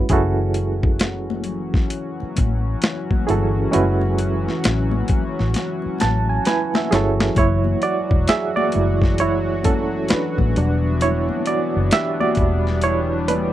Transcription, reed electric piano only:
0.00 3.71 G#3 medium
0.00 0.10 C#4 medium
0.00 0.11 E4 medium
0.00 0.13 F#4 medium
0.00 3.75 B4 loud
0.10 1.85 C#4 medium
0.10 1.85 E4 medium
0.10 1.86 F#4 medium
0.10 1.84 G#4 medium
0.10 1.86 A4 medium
3.27 3.71 C#4 medium
3.27 3.72 E4 medium
3.27 3.73 F#4 medium
3.27 3.71 G#4 medium
3.27 3.73 A4 medium
3.71 5.47 G#3 medium
3.71 5.47 C#4 medium
3.71 5.48 E4 medium
3.71 5.48 F#4 medium
3.71 5.49 B4 medium
6.01 6.27 A5 medium
6.29 6.45 G#5 medium
6.47 6.92 E4 medium
6.47 7.40 B4 medium
6.47 6.73 G#5 medium
6.76 6.91 E5 medium
6.91 7.36 C#4 medium
6.91 7.36 E4 medium
6.91 7.37 F#4 medium
6.91 7.35 G#4 medium
6.91 7.35 C#5 medium
6.95 7.37 A4 medium
7.38 7.81 E4 medium
7.38 7.84 C#5 loud
7.83 8.26 F#4 medium
7.83 8.30 D5 loud
8.29 8.56 G#4 medium
8.29 8.58 E5 loud
8.56 9.15 F#4 medium
8.56 9.21 D5 medium
8.74 9.39 G#3 medium
8.74 9.39 A3 soft
8.74 9.20 E4 medium
9.20 9.63 E4 medium
9.20 9.62 C#5 loud
9.65 10.08 C#4 medium
9.65 10.12 A4 medium
10.10 10.56 D4 medium
10.10 10.97 B4 medium
10.57 11.21 F#3 medium
10.57 11.21 G3 medium
10.57 11.21 D4 medium
11.02 11.44 E4 medium
11.02 11.48 C#5 loud
11.47 11.90 F#4 medium
11.47 11.89 D5 loud
11.93 12.19 G4 medium
11.93 12.19 E5 loud
12.21 12.80 F#4 medium
12.21 12.85 D5 loud
12.84 13.26 E4 medium
12.84 13.26 C#5 loud
13.28 13.53 D4 medium
13.28 13.53 B4 medium

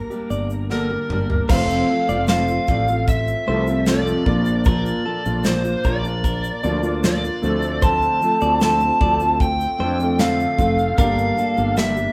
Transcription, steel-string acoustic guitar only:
0.00 0.12 G3 soft
0.00 0.11 A#3 soft
0.00 0.10 D4 soft
0.10 0.69 G3 soft
0.10 0.70 A#3 soft
0.10 0.70 D4 soft
0.10 0.70 G4 medium
0.70 0.90 G2 medium
0.70 0.90 D3 medium
0.70 0.90 G3 medium
0.70 0.90 A#3 medium
0.70 0.90 D4 medium
0.70 0.89 G4 medium
0.90 1.10 G3 soft
0.90 1.11 A#3 soft
0.90 1.11 D4 soft
0.90 1.10 G4 soft
1.11 1.30 G3 medium
1.11 1.30 A#3 medium
1.11 1.29 D4 medium
1.11 1.28 G4 medium
1.29 1.51 G3 soft
1.29 1.50 A#3 soft
1.29 1.50 D4 soft
1.29 1.49 G4 soft
1.50 1.89 F2 medium
1.50 1.89 C3 medium
1.50 1.87 F3 medium
1.50 1.89 A3 medium
1.50 1.90 C4 medium
1.50 1.90 F4 medium
1.89 2.09 F3 medium
1.89 2.09 A3 medium
1.89 2.09 C4 medium
1.89 2.08 F4 medium
2.09 2.29 F3 soft
2.09 2.28 A3 soft
2.09 2.29 C4 medium
2.09 2.29 F4 medium
2.28 2.48 F2 medium
2.28 2.49 C3 medium
2.28 2.49 F3 medium
2.28 2.49 A3 medium
2.28 2.48 C4 medium
2.28 2.47 F4 medium
2.49 2.67 F3 soft
2.49 2.68 A3 soft
2.49 2.69 C4 soft
2.49 2.68 F4 medium
2.68 2.88 F3 medium
2.68 2.88 A3 medium
2.68 2.87 C4 medium
2.68 2.86 F4 medium
2.87 3.46 F3 soft
2.87 3.47 A3 soft
2.87 3.48 C4 soft
2.87 3.47 F4 soft
3.47 3.67 F3 medium
3.47 3.68 A3 medium
3.47 3.68 C4 medium
3.47 3.66 F4 medium
3.67 3.86 F3 soft
3.67 3.87 A3 soft
3.67 3.86 C4 medium
3.67 3.87 F4 soft
3.87 4.26 F2 medium
3.87 4.27 C3 medium
3.87 4.25 F3 medium
3.87 4.27 A3 medium
3.87 4.27 C4 medium
3.87 4.27 F4 medium
4.26 4.65 F3 medium
4.26 4.66 A#3 medium
4.26 4.66 D4 medium
4.26 4.66 F4 medium
4.66 5.05 A#2 medium
4.66 5.04 F3 medium
4.66 5.05 A#3 medium
4.66 5.06 D4 medium
4.66 5.06 F4 medium
5.06 5.25 F3 medium
5.06 5.26 A#3 medium
5.06 5.26 D4 medium
5.06 5.24 F4 medium
5.26 5.45 A#3 soft
5.26 5.45 D4 soft
5.26 5.45 F4 medium
5.45 5.65 A#2 medium
5.45 5.65 F3 medium
5.45 5.65 A#3 medium
5.45 5.65 D4 medium
5.45 5.64 F4 loud
5.65 5.84 A#3 soft
5.65 5.85 D4 medium
5.65 5.85 F4 medium
5.84 6.04 F3 medium
5.84 6.05 A#3 medium
5.84 6.04 D4 medium
5.84 6.03 F4 medium
6.04 6.64 A#3 soft
6.04 6.64 D4 medium
6.04 6.63 F4 medium
6.64 6.84 F3 medium
6.64 6.84 A#3 medium
6.64 6.83 D4 medium
6.64 6.82 F4 medium
6.83 7.03 A#3 medium
6.83 7.04 D4 soft
6.83 7.03 F4 medium
7.03 7.23 A#2 medium
7.03 7.23 F3 medium
7.03 7.24 A#3 medium
7.03 7.24 D4 medium
7.03 7.22 F4 loud
7.24 7.44 A#3 soft
7.24 7.44 D4 soft
7.24 7.43 F4 medium
7.44 7.82 F3 medium
7.44 7.83 A3 medium
7.44 7.83 C4 medium
7.44 7.84 F4 medium
7.82 8.22 D3 medium
7.82 8.20 F3 medium
7.82 8.21 A3 medium
7.82 8.22 C4 medium
7.82 8.23 F4 medium
8.21 8.41 F3 medium
8.21 8.42 A3 medium
8.21 8.41 C4 medium
8.21 8.40 F4 medium
8.41 8.61 A3 soft
8.41 8.62 C4 medium
8.41 8.61 F4 medium
8.62 8.81 D3 medium
8.62 8.82 F3 medium
8.62 8.82 A3 medium
8.62 8.82 C4 medium
8.62 8.80 F4 loud
8.81 9.02 A3 soft
8.81 9.02 C4 medium
8.81 9.01 F4 medium
9.02 9.21 F3 medium
9.02 9.22 A3 medium
9.02 9.22 C4 medium
9.02 9.20 F4 medium
9.21 9.80 A3 soft
9.21 9.81 C4 soft
9.21 9.80 F4 medium
9.80 10.00 F3 medium
9.80 10.00 A3 medium
9.80 10.00 C4 medium
9.80 9.99 F4 medium
10.00 10.19 A3 soft
10.00 10.20 C4 soft
10.00 10.19 F4 medium
10.19 10.59 D3 medium
10.19 10.57 F3 medium
10.19 10.58 A3 medium
10.19 10.59 C4 loud
10.19 10.60 F4 medium
10.58 10.98 F3 medium
10.58 10.99 A3 medium
10.58 10.99 C4 medium
10.58 11.00 F4 medium
10.99 11.38 G2 medium
10.99 11.38 D3 medium
10.99 11.37 G3 medium
10.99 11.38 A#3 medium
10.99 11.39 D4 medium
10.99 11.39 G4 medium
11.38 11.58 G3 medium
11.38 11.58 A#3 medium
11.38 11.57 D4 medium
11.38 11.56 G4 medium
11.57 11.76 G3 soft
11.57 11.77 A#3 medium
11.57 11.77 D4 medium
11.57 11.77 G4 medium
11.77 11.97 G2 medium
11.77 11.97 D3 medium
11.77 11.97 G3 medium
11.77 11.97 A#3 medium
11.77 11.96 D4 medium
11.77 11.95 G4 medium
11.96 12.12 G3 soft
11.96 12.12 A#3 soft
11.96 12.12 D4 soft
11.96 12.12 G4 soft

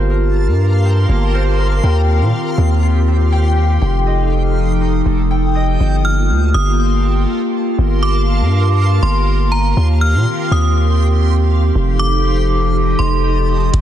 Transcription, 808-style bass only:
0.00 0.49 G1 loud
0.47 1.06 G2 loud
1.09 1.81 G1 loud
1.84 2.22 D#2 loud
2.21 2.33 A#2 medium
2.58 3.78 D#2 loud
3.82 5.02 F1 loud
5.06 5.77 F1 loud
5.80 6.31 G1 loud
6.30 6.53 D2 loud
6.55 7.26 G1 loud
7.79 8.42 G1 loud
8.40 8.99 G2 loud
9.03 9.74 G1 loud
9.77 10.16 D#2 loud
10.14 10.26 A#2 loud
10.51 11.71 D#2 loud
11.75 12.95 F1 loud
12.99 13.71 F1 loud
13.74 13.81 G1 loud

